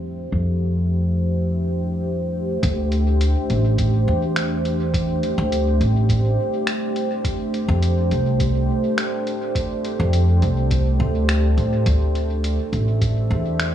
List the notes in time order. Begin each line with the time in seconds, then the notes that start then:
Already playing: F2 A3 D4 G4 C5 E5
0.32 F2
2.63 D2, kick, closed hi-hat
2.92 closed hi-hat
3.21 closed hi-hat
3.50 A1, closed hi-hat
3.78 kick, closed hi-hat
4.08 E2
4.36 finger snap, closed hi-hat
4.65 closed hi-hat
4.94 kick, closed hi-hat
5.23 closed hi-hat
5.38 D2
5.52 closed hi-hat
5.81 A1, closed hi-hat
6.09 kick, closed hi-hat
6.67 finger snap, closed hi-hat
6.96 closed hi-hat
7.25 kick, closed hi-hat
7.54 closed hi-hat
7.68 F2
7.83 closed hi-hat
8.11 C2, closed hi-hat
8.40 kick, closed hi-hat
8.98 finger snap, closed hi-hat
9.27 closed hi-hat
9.55 kick, closed hi-hat
9.85 closed hi-hat
10.00 F2
10.13 closed hi-hat
10.42 C2, closed hi-hat
10.71 kick, closed hi-hat
11.00 D2
11.29 finger snap, closed hi-hat
11.57 A2, closed hi-hat
11.86 D2, kick, closed hi-hat
11.97 D4
12.13 G4, closed hi-hat
12.28 E5
12.44 closed hi-hat
12.69 A1 C5, closed hi-hat
13.01 kick, closed hi-hat
13.31 E2
13.60 finger snap, closed hi-hat